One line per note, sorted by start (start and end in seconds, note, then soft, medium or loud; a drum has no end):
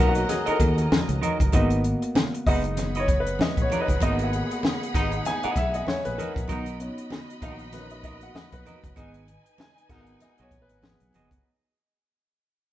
0.00 0.23 B1 medium
0.00 1.49 A#3 medium
0.00 1.49 C#4 soft
0.00 0.19 D#4 medium
0.00 1.50 D#4 medium
0.00 0.16 F#4 medium
0.00 1.49 F#4 medium
0.00 0.15 A#4 medium
0.00 0.50 A#4 medium
0.00 1.55 B4 medium
0.00 1.56 C#5 medium
0.00 1.49 D#5 medium
0.00 0.16 F#5 medium
0.00 1.49 A#5 medium
0.09 0.30 F#4 medium
0.15 muted clean electric guitar stroke soft
0.15 closed hi-hat soft
0.29 0.46 G#4 medium
0.29 muted clean electric guitar stroke soft
0.29 snare soft
0.29 closed hi-hat loud
0.29 muted conga soft
0.45 0.59 D#4 medium
0.45 0.59 F#4 medium
0.45 0.50 A4 medium
0.45 0.59 A#4 medium
0.45 0.59 D#5 medium
0.45 muted fingered electric bass stroke soft
0.45 closed hi-hat medium
0.50 0.79 A#4 medium
0.60 0.85 D#2 medium
0.60 muted clean electric guitar stroke soft
0.60 kick medium
0.60 closed hi-hat medium
0.60 muted conga medium
0.78 muted clean electric guitar stroke soft
0.78 closed hi-hat medium
0.92 muted fingered electric bass stroke soft
0.92 snare loud
0.92 high conga medium
1.08 1.20 C#2 medium
1.08 muted clean electric guitar stroke soft
1.08 closed hi-hat medium
1.21 1.43 D#4 medium
1.21 1.40 F#4 medium
1.21 1.39 A#4 medium
1.21 1.39 D#5 medium
1.21 closed hi-hat medium
1.21 high conga medium
1.40 1.51 F#1 medium
1.40 muted clean electric guitar stroke soft
1.40 kick medium
1.40 closed hi-hat medium
1.52 1.93 G#1 loud
1.52 1.69 G#3 medium
1.52 2.42 A#3 medium
1.52 1.68 B3 medium
1.52 2.43 B3 soft
1.52 1.82 D#4 medium
1.52 1.69 D#4 medium
1.52 1.82 F#4 medium
1.52 2.43 F#4 medium
1.52 1.83 B4 medium
1.52 1.83 D#5 medium
1.52 kick loud
1.52 closed hi-hat medium
1.52 muted conga soft
1.70 closed hi-hat medium
1.84 closed hi-hat medium
2.02 muted clean electric guitar stroke soft
2.02 closed hi-hat medium
2.15 muted clean electric guitar stroke soft
2.15 snare loud
2.15 high conga medium
2.34 muted clean electric guitar stroke soft
2.34 closed hi-hat medium
2.46 3.36 F#1 medium
2.46 2.93 G#3 medium
2.46 2.93 B3 medium
2.46 2.93 D#4 medium
2.46 2.68 D#4 medium
2.46 2.65 F#4 medium
2.46 2.64 B4 medium
2.46 2.95 D#5 medium
2.46 2.65 F#5 medium
2.46 kick loud
2.46 open hi-hat medium
2.64 muted clean electric guitar stroke soft
2.64 closed hi-hat soft
2.77 6.45 G#4 medium
2.77 6.45 F#5 medium
2.77 6.45 B5 medium
2.77 muted clean electric guitar stroke soft
2.77 snare soft
2.77 closed hi-hat medium
2.77 muted conga soft
2.95 3.07 D#4 medium
2.95 3.08 F#4 medium
2.95 3.08 B4 medium
2.95 3.09 D#5 medium
2.95 closed hi-hat medium
2.99 3.20 C#5 medium
3.08 muted clean electric guitar stroke soft
3.08 kick medium
3.08 closed hi-hat medium
3.08 muted conga medium
3.20 3.41 B4 medium
3.27 muted clean electric guitar stroke soft
3.27 closed hi-hat medium
3.39 3.62 D#5 medium
3.39 snare loud
3.39 high conga medium
3.57 3.68 A#1 medium
3.57 muted clean electric guitar stroke soft
3.57 kick medium
3.57 closed hi-hat medium
3.62 3.67 C#5 medium
3.70 3.93 D#4 medium
3.70 3.89 F#4 medium
3.70 3.89 B4 medium
3.70 3.88 D#5 medium
3.70 closed hi-hat medium
3.70 high conga medium
3.82 4.01 B4 medium
3.88 3.99 F#1 medium
3.88 muted clean electric guitar stroke soft
3.88 kick medium
3.88 closed hi-hat medium
4.00 4.41 G#1 loud
4.00 4.17 G#3 medium
4.00 4.44 A#3 medium
4.00 4.17 B3 medium
4.00 4.45 B3 soft
4.00 4.17 D#4 medium
4.00 4.30 D#4 medium
4.00 4.31 F#4 medium
4.00 4.45 F#4 medium
4.00 4.31 B4 medium
4.00 4.23 D#5 loud
4.00 4.31 D#5 medium
4.00 kick loud
4.00 closed hi-hat medium
4.00 muted conga medium
4.19 closed hi-hat medium
4.24 4.52 F#5 medium
4.33 closed hi-hat medium
4.33 muted conga soft
4.51 muted clean electric guitar stroke soft
4.51 closed hi-hat medium
4.63 muted clean electric guitar stroke soft
4.63 snare loud
4.63 high conga medium
4.82 muted clean electric guitar stroke soft
4.82 closed hi-hat medium
4.94 5.19 G#1 medium
4.94 5.41 G#3 medium
4.94 5.41 B3 medium
4.94 5.15 D#4 medium
4.94 5.41 D#4 medium
4.94 5.13 F#4 medium
4.94 5.12 B4 medium
4.94 5.12 F#5 medium
4.94 kick loud
4.94 closed hi-hat medium
5.12 muted clean electric guitar stroke soft
5.12 closed hi-hat soft
5.25 5.44 G#5 loud
5.25 muted clean electric guitar stroke soft
5.25 snare soft
5.25 closed hi-hat loud
5.25 muted conga soft
5.43 5.55 D#4 medium
5.43 5.56 F#4 medium
5.43 5.56 B4 medium
5.43 5.57 D#5 medium
5.43 5.57 F#5 medium
5.43 muted fingered electric bass stroke soft
5.43 closed hi-hat medium
5.56 5.81 B1 medium
5.56 5.75 E5 loud
5.56 muted clean electric guitar stroke soft
5.56 kick medium
5.56 closed hi-hat medium
5.56 muted conga medium
5.74 5.88 D#5 medium
5.74 muted clean electric guitar stroke soft
5.74 closed hi-hat medium
5.87 6.06 C#5 medium
5.87 muted fingered electric bass stroke soft
5.87 snare loud
5.87 high conga medium
6.05 6.16 A#1 medium
6.05 6.19 B4 medium
6.05 muted clean electric guitar stroke soft
6.05 closed hi-hat medium
6.18 6.39 D#4 medium
6.18 6.36 F#4 medium
6.18 6.47 A#4 medium
6.18 6.35 B4 medium
6.18 6.34 D#5 medium
6.18 closed hi-hat medium
6.18 high conga medium
6.36 6.47 A#1 medium
6.36 muted clean electric guitar stroke soft
6.36 kick loud
6.36 closed hi-hat medium
6.48 6.88 B1 loud
6.48 6.64 D#3 medium
6.48 6.64 B3 medium
6.48 6.77 D#4 medium
6.48 6.64 D#4 medium
6.48 6.78 F#4 medium
6.48 8.93 F#4 medium
6.48 6.78 A#4 medium
6.48 6.78 D#5 medium
6.48 8.93 D#5 medium
6.48 8.93 B5 loud
6.48 kick loud
6.48 closed hi-hat medium
6.48 muted conga medium
6.66 closed hi-hat medium
6.80 8.93 B3 medium
6.80 7.72 C#4 medium
6.80 7.73 D#4 medium
6.80 closed hi-hat medium
6.98 muted clean electric guitar stroke soft
6.98 closed hi-hat medium
7.10 muted clean electric guitar stroke soft
7.10 snare loud
7.10 high conga medium
7.28 muted clean electric guitar stroke soft
7.28 closed hi-hat medium
7.41 8.31 A#1 medium
7.41 7.88 D#3 medium
7.41 7.88 B3 medium
7.41 7.64 D#4 medium
7.41 7.88 D#4 medium
7.41 7.59 F#4 medium
7.41 7.59 A#4 medium
7.41 7.74 D#5 medium
7.41 7.59 F#5 medium
7.41 kick loud
7.41 closed hi-hat medium
7.59 muted clean electric guitar stroke soft
7.59 closed hi-hat medium
7.73 8.01 A#3 medium
7.73 8.01 C#4 soft
7.73 8.01 D#4 medium
7.73 7.92 B4 medium
7.73 muted clean electric guitar stroke soft
7.73 snare soft
7.73 closed hi-hat loud
7.73 muted conga medium
7.90 8.03 D#5 medium
7.90 closed hi-hat medium
8.03 8.21 D#4 medium
8.03 8.21 F#4 medium
8.03 8.21 A#4 medium
8.03 8.21 D#5 loud
8.03 8.21 D#5 medium
8.03 kick medium
8.03 closed hi-hat medium
8.03 muted conga medium
8.21 8.36 F#5 loud
8.21 muted clean electric guitar stroke medium
8.21 closed hi-hat medium
8.35 8.54 D#5 loud
8.35 muted fingered electric bass stroke soft
8.35 snare loud
8.35 high conga medium
8.52 8.63 B1 medium
8.52 9.11 B4 medium
8.52 muted clean electric guitar stroke soft
8.52 kick medium
8.52 closed hi-hat medium
8.65 8.86 D#4 medium
8.65 8.83 F#4 medium
8.65 8.83 A#4 medium
8.65 8.82 D#5 medium
8.65 closed hi-hat medium
8.65 high conga medium
8.83 8.94 F#1 medium
8.83 muted clean electric guitar stroke soft
8.83 kick loud
8.83 closed hi-hat medium
8.96 9.36 G#1 loud
8.96 9.12 G#3 medium
8.96 9.25 B3 medium
8.96 9.12 B3 medium
8.96 11.40 D#4 medium
8.96 9.12 D#4 medium
8.96 9.25 F#4 medium
8.96 9.26 G#4 medium
8.96 11.40 B4 medium
8.96 9.26 D#5 medium
8.96 11.40 G#5 loud
8.96 kick loud
8.96 closed hi-hat medium
8.96 muted conga soft
9.14 closed hi-hat medium
9.28 closed hi-hat medium
9.28 muted conga soft
9.45 muted clean electric guitar stroke soft
9.45 closed hi-hat medium
9.58 10.02 G#5 loud
9.58 muted clean electric guitar stroke soft
9.58 snare loud
9.58 high conga medium
9.76 muted clean electric guitar stroke soft
9.76 closed hi-hat medium
9.89 10.14 G#1 medium
9.89 10.36 G#3 medium
9.89 10.10 B3 medium
9.89 10.78 B3 medium
9.89 10.36 B3 medium
9.89 10.36 D#4 loud
9.89 10.08 F#4 medium
9.89 10.79 F#4 medium
9.89 10.07 G#4 medium
9.89 10.78 A#4 medium
9.89 10.07 F#5 medium
9.89 kick loud
9.89 closed hi-hat medium
9.89 low conga medium
10.01 10.22 F#5 loud
10.06 muted clean electric guitar stroke soft
10.06 closed hi-hat medium
10.20 10.42 D#5 loud
10.20 muted clean electric guitar stroke soft
10.20 snare soft
10.20 closed hi-hat loud
10.20 muted conga soft
10.38 10.49 B1 medium
10.38 10.51 B3 medium
10.38 10.52 F#4 medium
10.38 10.52 G#4 medium
10.38 10.53 D#5 medium
10.38 closed hi-hat medium
10.42 10.63 C#5 medium
10.51 10.70 A#1 medium
10.51 kick medium
10.51 closed hi-hat medium
10.51 muted conga medium
10.62 10.81 B4 medium
10.69 10.94 G#1 medium
10.69 muted clean electric guitar stroke soft
10.69 closed hi-hat medium
10.82 11.40 G#4 medium
10.82 snare loud
10.82 high conga medium
11.00 11.11 B1 loud
11.00 muted clean electric guitar stroke soft
11.00 closed hi-hat medium
11.13 11.38 F#1 medium
11.13 11.35 B3 medium
11.13 11.32 F#4 medium
11.13 11.32 G#4 medium
11.13 11.31 D#5 medium
11.13 closed hi-hat medium
11.13 high conga medium
11.31 muted clean electric guitar stroke soft
11.31 kick loud
11.31 closed hi-hat medium